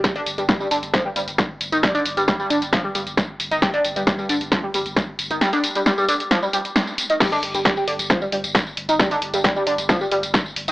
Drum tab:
CC |----------------|----------------|----------------|----------------|
HH |xooxx-oxx-oxx-ox|xooxx-oxx-oxx-ox|xooxx-oxx-oxx-ox|xooxx-oxx-oxo-ox|
TB |x-xxxxxxx-xxx-xx|xxxxxxxxx-xxx-xx|x-xxxxxxx-xxx-xx|xxxxxxxxxxxxxxxx|
SD |o---o---o---o---|o---o---o---o---|o---o---o---o---|o---o---o---o---|
BD |o---o---o---o---|o---o---o---o---|o---o---o---o---|----------------|

CC |x---------------|----------------|
HH |xooxx-oxx-oxx-ox|xooxx-oxx-oxx-ox|
TB |xx-xxx-x-x-xxx-x|xx-xxx-xxx-xxx-x|
SD |o---o---o---o---|o---o---o---o---|
BD |o---o---o---o---|o---o---o---o---|